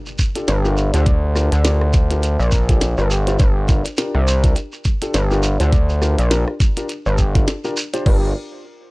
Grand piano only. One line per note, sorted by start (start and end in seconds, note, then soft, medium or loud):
0.36 0.50 D4 medium
0.36 0.50 F4 medium
0.36 0.50 G4 medium
0.36 0.50 A4 medium
0.65 0.74 D4 medium
0.65 0.74 F4 medium
0.65 0.74 G4 medium
0.65 0.74 A#4 medium
0.94 1.03 D4 medium
0.94 1.03 F4 medium
0.94 1.03 G4 medium
0.94 1.03 C5 loud
1.36 1.47 D4 medium
1.36 1.47 F4 medium
1.36 1.47 G4 medium
1.36 1.47 A#4 medium
1.65 1.83 D4 medium
1.65 1.83 F4 medium
1.65 1.83 G4 medium
1.65 1.83 A#4 medium
2.11 2.19 D4 medium
2.11 2.19 F4 medium
2.11 2.19 G4 medium
2.11 2.19 A#4 medium
2.69 2.83 D4 medium
2.69 2.83 F4 medium
2.69 2.83 G4 medium
2.69 2.83 A4 medium
2.98 3.07 D4 medium
2.98 3.07 F4 medium
2.98 3.07 G4 medium
2.98 3.07 A#4 medium
3.27 3.36 D4 medium
3.27 3.36 F4 medium
3.27 3.36 G4 medium
3.27 3.36 C5 medium
3.69 3.80 D4 medium
3.69 3.80 F4 medium
3.69 3.80 G4 medium
3.69 3.80 A#4 medium
3.98 4.16 D4 medium
3.98 4.16 F4 medium
3.98 4.16 G4 medium
3.98 4.16 A#4 medium
4.44 4.52 D4 medium
4.44 4.52 F4 medium
4.44 4.52 G4 medium
4.44 4.52 A#4 medium
5.02 5.16 D4 medium
5.02 5.16 F4 medium
5.02 5.16 G4 medium
5.02 5.16 A4 medium
5.31 5.40 D4 medium
5.31 5.40 F4 medium
5.31 5.40 G4 medium
5.31 5.40 A#4 medium
5.60 5.69 D4 medium
5.60 5.69 F4 medium
5.60 5.69 G4 medium
5.60 5.69 C5 loud
6.02 6.13 D4 medium
6.02 6.13 F4 medium
6.02 6.14 G4 medium
6.02 6.13 A#4 medium
6.31 6.49 D4 medium
6.31 6.49 F4 medium
6.31 6.49 G4 medium
6.31 6.49 A#4 medium
6.77 6.85 D4 medium
6.77 6.86 F4 medium
6.77 6.85 G4 medium
6.77 6.85 A#4 medium
7.35 7.50 D4 medium
7.35 7.50 F4 medium
7.35 7.50 G4 medium
7.35 7.50 A4 medium
7.64 7.73 D4 medium
7.64 7.73 F4 medium
7.64 7.73 G4 medium
7.64 7.73 A#4 medium
7.93 8.02 D4 medium
7.93 8.02 F4 medium
7.93 8.02 G4 medium
7.93 8.02 C5 loud
8.06 8.28 D4 medium
8.06 8.28 F4 medium
8.06 8.28 G4 medium
8.06 8.28 A#4 medium